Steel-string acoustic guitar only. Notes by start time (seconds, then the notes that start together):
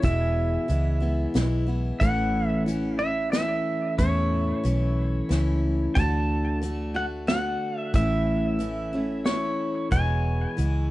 0.02 E2 B2 E3 G#3 B3 E4
0.68 E3 G#3 B3 E4
1.00 E3 G#3 B3 E4
1.34 E3 G#3 B3 E4
1.67 E3 G#3 B3 E4
2.01 A2 E3 A3 C#4 E4
2.66 E3 A3 C#4 E4
2.99 A3 C#4 E4
3.32 E3 A3 C#4 E4
3.98 A2 E3 A3 C#4 E4
4.64 E3 A3 C#4 E4
5.29 E3 A3 C#4 E4
5.96 D3 A3 D4 F#4
6.62 D3 A3 D4 F#4
6.94 A3 D4 F#4
7.27 D3 A3 D4 F#4
7.94 A2 E3 A3 C#4 E4
8.59 E3 A3 C#4 E4
8.93 A3 C#4 E4
9.25 E3 A3 C#4 E4
9.91 E2 B2 E3 G#3 B3 E4
10.57 E3 G#3 B3 E4